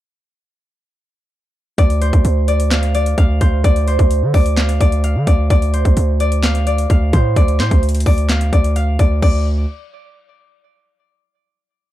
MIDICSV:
0, 0, Header, 1, 4, 480
1, 0, Start_track
1, 0, Key_signature, -1, "minor"
1, 0, Tempo, 465116
1, 1840, Time_signature, 4, 2, 24, 8
1, 12301, End_track
2, 0, Start_track
2, 0, Title_t, "Harp"
2, 0, Program_c, 0, 46
2, 1839, Note_on_c, 0, 74, 92
2, 2079, Note_on_c, 0, 72, 79
2, 2555, Note_off_c, 0, 74, 0
2, 2559, Note_on_c, 0, 74, 73
2, 2799, Note_on_c, 0, 77, 92
2, 3035, Note_off_c, 0, 74, 0
2, 3039, Note_on_c, 0, 74, 79
2, 3275, Note_off_c, 0, 77, 0
2, 3279, Note_on_c, 0, 77, 88
2, 3515, Note_off_c, 0, 72, 0
2, 3519, Note_on_c, 0, 72, 80
2, 3755, Note_off_c, 0, 74, 0
2, 3759, Note_on_c, 0, 74, 99
2, 3995, Note_off_c, 0, 72, 0
2, 3999, Note_on_c, 0, 72, 95
2, 4476, Note_off_c, 0, 74, 0
2, 4480, Note_on_c, 0, 74, 82
2, 4715, Note_off_c, 0, 77, 0
2, 4719, Note_on_c, 0, 77, 84
2, 4955, Note_off_c, 0, 74, 0
2, 4959, Note_on_c, 0, 74, 84
2, 5195, Note_off_c, 0, 77, 0
2, 5199, Note_on_c, 0, 77, 77
2, 5435, Note_off_c, 0, 74, 0
2, 5439, Note_on_c, 0, 74, 73
2, 5675, Note_off_c, 0, 74, 0
2, 5679, Note_on_c, 0, 74, 87
2, 5915, Note_off_c, 0, 72, 0
2, 5920, Note_on_c, 0, 72, 75
2, 6396, Note_off_c, 0, 74, 0
2, 6400, Note_on_c, 0, 74, 82
2, 6635, Note_off_c, 0, 77, 0
2, 6639, Note_on_c, 0, 77, 97
2, 6875, Note_off_c, 0, 74, 0
2, 6880, Note_on_c, 0, 74, 80
2, 7117, Note_off_c, 0, 77, 0
2, 7121, Note_on_c, 0, 77, 79
2, 7356, Note_off_c, 0, 72, 0
2, 7360, Note_on_c, 0, 72, 87
2, 7596, Note_off_c, 0, 74, 0
2, 7600, Note_on_c, 0, 74, 88
2, 7798, Note_off_c, 0, 74, 0
2, 7836, Note_off_c, 0, 72, 0
2, 7840, Note_on_c, 0, 72, 94
2, 8037, Note_off_c, 0, 72, 0
2, 8319, Note_on_c, 0, 74, 80
2, 8517, Note_off_c, 0, 74, 0
2, 8556, Note_off_c, 0, 77, 0
2, 8560, Note_on_c, 0, 77, 80
2, 8757, Note_off_c, 0, 77, 0
2, 8800, Note_on_c, 0, 74, 82
2, 8997, Note_off_c, 0, 74, 0
2, 9039, Note_on_c, 0, 77, 75
2, 9237, Note_off_c, 0, 77, 0
2, 9279, Note_on_c, 0, 74, 70
2, 9477, Note_off_c, 0, 74, 0
2, 9519, Note_on_c, 0, 74, 88
2, 9743, Note_off_c, 0, 74, 0
2, 12301, End_track
3, 0, Start_track
3, 0, Title_t, "808-style bass"
3, 0, Program_c, 1, 38
3, 1839, Note_on_c, 1, 38, 113
3, 2185, Note_off_c, 1, 38, 0
3, 2199, Note_on_c, 1, 38, 106
3, 2315, Note_off_c, 1, 38, 0
3, 2319, Note_on_c, 1, 38, 111
3, 3241, Note_off_c, 1, 38, 0
3, 3280, Note_on_c, 1, 38, 105
3, 3510, Note_off_c, 1, 38, 0
3, 3520, Note_on_c, 1, 38, 106
3, 3750, Note_off_c, 1, 38, 0
3, 3759, Note_on_c, 1, 38, 113
3, 4105, Note_off_c, 1, 38, 0
3, 4119, Note_on_c, 1, 38, 106
3, 4359, Note_on_c, 1, 50, 99
3, 4375, Note_off_c, 1, 38, 0
3, 4474, Note_off_c, 1, 50, 0
3, 4479, Note_on_c, 1, 38, 102
3, 4940, Note_off_c, 1, 38, 0
3, 4960, Note_on_c, 1, 38, 107
3, 5319, Note_on_c, 1, 50, 101
3, 5335, Note_off_c, 1, 38, 0
3, 5433, Note_off_c, 1, 50, 0
3, 5440, Note_on_c, 1, 38, 103
3, 5670, Note_off_c, 1, 38, 0
3, 5679, Note_on_c, 1, 38, 112
3, 6025, Note_off_c, 1, 38, 0
3, 6039, Note_on_c, 1, 38, 104
3, 6154, Note_off_c, 1, 38, 0
3, 6159, Note_on_c, 1, 38, 108
3, 7081, Note_off_c, 1, 38, 0
3, 7120, Note_on_c, 1, 38, 110
3, 7350, Note_off_c, 1, 38, 0
3, 7360, Note_on_c, 1, 45, 104
3, 7590, Note_off_c, 1, 45, 0
3, 7600, Note_on_c, 1, 38, 111
3, 7839, Note_on_c, 1, 45, 98
3, 7855, Note_off_c, 1, 38, 0
3, 7953, Note_off_c, 1, 45, 0
3, 7959, Note_on_c, 1, 38, 105
3, 8305, Note_off_c, 1, 38, 0
3, 8320, Note_on_c, 1, 38, 105
3, 8780, Note_off_c, 1, 38, 0
3, 8800, Note_on_c, 1, 38, 105
3, 9260, Note_off_c, 1, 38, 0
3, 9280, Note_on_c, 1, 38, 104
3, 9510, Note_off_c, 1, 38, 0
3, 9520, Note_on_c, 1, 38, 107
3, 9966, Note_off_c, 1, 38, 0
3, 12301, End_track
4, 0, Start_track
4, 0, Title_t, "Drums"
4, 1839, Note_on_c, 9, 36, 127
4, 1840, Note_on_c, 9, 42, 89
4, 1943, Note_off_c, 9, 36, 0
4, 1943, Note_off_c, 9, 42, 0
4, 1961, Note_on_c, 9, 42, 65
4, 2065, Note_off_c, 9, 42, 0
4, 2080, Note_on_c, 9, 42, 65
4, 2183, Note_off_c, 9, 42, 0
4, 2199, Note_on_c, 9, 36, 98
4, 2200, Note_on_c, 9, 42, 58
4, 2302, Note_off_c, 9, 36, 0
4, 2303, Note_off_c, 9, 42, 0
4, 2318, Note_on_c, 9, 42, 91
4, 2421, Note_off_c, 9, 42, 0
4, 2560, Note_on_c, 9, 42, 85
4, 2663, Note_off_c, 9, 42, 0
4, 2680, Note_on_c, 9, 42, 68
4, 2784, Note_off_c, 9, 42, 0
4, 2799, Note_on_c, 9, 42, 83
4, 2800, Note_on_c, 9, 38, 124
4, 2807, Note_on_c, 9, 39, 104
4, 2902, Note_off_c, 9, 42, 0
4, 2903, Note_off_c, 9, 38, 0
4, 2910, Note_off_c, 9, 39, 0
4, 2919, Note_on_c, 9, 42, 57
4, 3022, Note_off_c, 9, 42, 0
4, 3040, Note_on_c, 9, 42, 75
4, 3144, Note_off_c, 9, 42, 0
4, 3160, Note_on_c, 9, 42, 56
4, 3263, Note_off_c, 9, 42, 0
4, 3280, Note_on_c, 9, 36, 99
4, 3280, Note_on_c, 9, 42, 81
4, 3383, Note_off_c, 9, 36, 0
4, 3383, Note_off_c, 9, 42, 0
4, 3519, Note_on_c, 9, 42, 83
4, 3520, Note_on_c, 9, 36, 89
4, 3622, Note_off_c, 9, 42, 0
4, 3623, Note_off_c, 9, 36, 0
4, 3759, Note_on_c, 9, 36, 124
4, 3759, Note_on_c, 9, 42, 91
4, 3862, Note_off_c, 9, 36, 0
4, 3862, Note_off_c, 9, 42, 0
4, 3881, Note_on_c, 9, 42, 64
4, 3984, Note_off_c, 9, 42, 0
4, 3999, Note_on_c, 9, 42, 66
4, 4103, Note_off_c, 9, 42, 0
4, 4119, Note_on_c, 9, 36, 97
4, 4119, Note_on_c, 9, 42, 58
4, 4222, Note_off_c, 9, 36, 0
4, 4222, Note_off_c, 9, 42, 0
4, 4238, Note_on_c, 9, 42, 96
4, 4341, Note_off_c, 9, 42, 0
4, 4479, Note_on_c, 9, 36, 106
4, 4480, Note_on_c, 9, 46, 90
4, 4583, Note_off_c, 9, 36, 0
4, 4583, Note_off_c, 9, 46, 0
4, 4600, Note_on_c, 9, 42, 68
4, 4703, Note_off_c, 9, 42, 0
4, 4719, Note_on_c, 9, 38, 125
4, 4719, Note_on_c, 9, 42, 82
4, 4727, Note_on_c, 9, 39, 103
4, 4822, Note_off_c, 9, 42, 0
4, 4823, Note_off_c, 9, 38, 0
4, 4830, Note_off_c, 9, 39, 0
4, 4838, Note_on_c, 9, 42, 58
4, 4942, Note_off_c, 9, 42, 0
4, 4959, Note_on_c, 9, 36, 92
4, 4960, Note_on_c, 9, 42, 81
4, 5063, Note_off_c, 9, 36, 0
4, 5063, Note_off_c, 9, 42, 0
4, 5080, Note_on_c, 9, 42, 59
4, 5183, Note_off_c, 9, 42, 0
4, 5200, Note_on_c, 9, 42, 84
4, 5303, Note_off_c, 9, 42, 0
4, 5439, Note_on_c, 9, 42, 84
4, 5440, Note_on_c, 9, 36, 92
4, 5543, Note_off_c, 9, 36, 0
4, 5543, Note_off_c, 9, 42, 0
4, 5679, Note_on_c, 9, 36, 124
4, 5680, Note_on_c, 9, 42, 92
4, 5783, Note_off_c, 9, 36, 0
4, 5783, Note_off_c, 9, 42, 0
4, 5801, Note_on_c, 9, 42, 66
4, 5905, Note_off_c, 9, 42, 0
4, 5920, Note_on_c, 9, 42, 65
4, 6023, Note_off_c, 9, 42, 0
4, 6039, Note_on_c, 9, 36, 95
4, 6040, Note_on_c, 9, 42, 58
4, 6142, Note_off_c, 9, 36, 0
4, 6143, Note_off_c, 9, 42, 0
4, 6158, Note_on_c, 9, 42, 96
4, 6261, Note_off_c, 9, 42, 0
4, 6400, Note_on_c, 9, 42, 87
4, 6503, Note_off_c, 9, 42, 0
4, 6520, Note_on_c, 9, 42, 67
4, 6624, Note_off_c, 9, 42, 0
4, 6638, Note_on_c, 9, 42, 84
4, 6639, Note_on_c, 9, 38, 127
4, 6647, Note_on_c, 9, 39, 100
4, 6742, Note_off_c, 9, 42, 0
4, 6743, Note_off_c, 9, 38, 0
4, 6750, Note_off_c, 9, 39, 0
4, 6758, Note_on_c, 9, 42, 56
4, 6862, Note_off_c, 9, 42, 0
4, 6881, Note_on_c, 9, 42, 79
4, 6984, Note_off_c, 9, 42, 0
4, 7001, Note_on_c, 9, 42, 59
4, 7104, Note_off_c, 9, 42, 0
4, 7120, Note_on_c, 9, 36, 97
4, 7120, Note_on_c, 9, 42, 80
4, 7223, Note_off_c, 9, 36, 0
4, 7223, Note_off_c, 9, 42, 0
4, 7360, Note_on_c, 9, 36, 94
4, 7360, Note_on_c, 9, 42, 81
4, 7463, Note_off_c, 9, 36, 0
4, 7463, Note_off_c, 9, 42, 0
4, 7600, Note_on_c, 9, 36, 124
4, 7600, Note_on_c, 9, 42, 87
4, 7703, Note_off_c, 9, 36, 0
4, 7703, Note_off_c, 9, 42, 0
4, 7722, Note_on_c, 9, 42, 64
4, 7825, Note_off_c, 9, 42, 0
4, 7841, Note_on_c, 9, 38, 100
4, 7841, Note_on_c, 9, 42, 66
4, 7848, Note_on_c, 9, 39, 78
4, 7944, Note_off_c, 9, 38, 0
4, 7944, Note_off_c, 9, 42, 0
4, 7951, Note_off_c, 9, 39, 0
4, 7959, Note_on_c, 9, 36, 94
4, 7960, Note_on_c, 9, 42, 57
4, 8062, Note_off_c, 9, 36, 0
4, 8063, Note_off_c, 9, 42, 0
4, 8080, Note_on_c, 9, 42, 57
4, 8140, Note_off_c, 9, 42, 0
4, 8140, Note_on_c, 9, 42, 70
4, 8200, Note_off_c, 9, 42, 0
4, 8200, Note_on_c, 9, 42, 79
4, 8260, Note_off_c, 9, 42, 0
4, 8260, Note_on_c, 9, 42, 92
4, 8320, Note_on_c, 9, 36, 103
4, 8320, Note_on_c, 9, 46, 85
4, 8363, Note_off_c, 9, 42, 0
4, 8423, Note_off_c, 9, 36, 0
4, 8423, Note_off_c, 9, 46, 0
4, 8440, Note_on_c, 9, 42, 65
4, 8543, Note_off_c, 9, 42, 0
4, 8558, Note_on_c, 9, 42, 81
4, 8559, Note_on_c, 9, 38, 124
4, 8567, Note_on_c, 9, 39, 101
4, 8662, Note_off_c, 9, 42, 0
4, 8663, Note_off_c, 9, 38, 0
4, 8670, Note_off_c, 9, 39, 0
4, 8679, Note_on_c, 9, 42, 57
4, 8782, Note_off_c, 9, 42, 0
4, 8800, Note_on_c, 9, 36, 88
4, 8801, Note_on_c, 9, 42, 80
4, 8903, Note_off_c, 9, 36, 0
4, 8904, Note_off_c, 9, 42, 0
4, 8920, Note_on_c, 9, 42, 58
4, 9024, Note_off_c, 9, 42, 0
4, 9040, Note_on_c, 9, 42, 80
4, 9143, Note_off_c, 9, 42, 0
4, 9280, Note_on_c, 9, 36, 92
4, 9280, Note_on_c, 9, 42, 82
4, 9383, Note_off_c, 9, 36, 0
4, 9383, Note_off_c, 9, 42, 0
4, 9519, Note_on_c, 9, 49, 88
4, 9520, Note_on_c, 9, 36, 108
4, 9623, Note_off_c, 9, 36, 0
4, 9623, Note_off_c, 9, 49, 0
4, 12301, End_track
0, 0, End_of_file